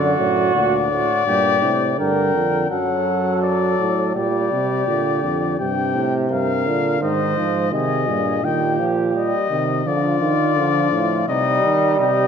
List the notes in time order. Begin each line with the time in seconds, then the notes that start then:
Already playing: F#2 D3 F#4 D5
0.19 F#2 A2
0.55 D2 A#2 D5
0.91 A2 F#4
1.27 G2 A#2 G4
1.62 A2 C3
1.98 G2 D3 A#4 G5
2.34 F2 D3
2.70 F#2 F#3 A4 F#5
3.42 D5
3.80 A2
4.15 A#2 G3 G4 D5
4.52 C3
4.87 A#2 D3
5.23 F2
5.59 G2 C3 G4 G5
5.95 A2
6.30 G2 A#4 F5
6.66 A#2 D3
7.01 G#2 D#3 C5 D#5
7.37 G#2 F3
7.72 C3 D#3 G#4 D#5
8.08 G2 A#2
8.43 A#2 D#3 G4 G5
8.80 F3
9.15 G3 D#5
9.50 C3 D#3
9.85 D3 F3 F4 D5
10.21 D#3
10.57 D3 F3
10.92 A2
11.28 C3 G3 D#4 D#5
11.63 D#3
11.99 C3 G4 D#5